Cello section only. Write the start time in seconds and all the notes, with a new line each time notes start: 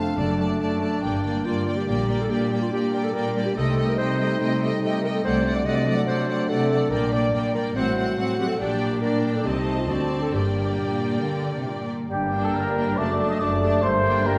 Already playing: F2
0.17 F#2
0.61 F#2
1.02 G2
1.45 G2
1.87 A#2
2.29 A#2
2.72 A#2
3.15 A#2
3.57 C3
3.99 C3
4.41 C3
4.83 C3
5.24 C3
5.66 C3
6.08 C3
6.50 C3
6.92 A#2
7.34 A#2
7.75 A2
8.18 A2
8.59 A#2
9.44 C3
9.87 D3
10.32 G2
10.77 A#2
11.21 D3
11.56 C3
11.66 A#2
12.10 G2
12.54 G2
12.97 F#2
13.40 F#2
13.83 G2
14.25 G2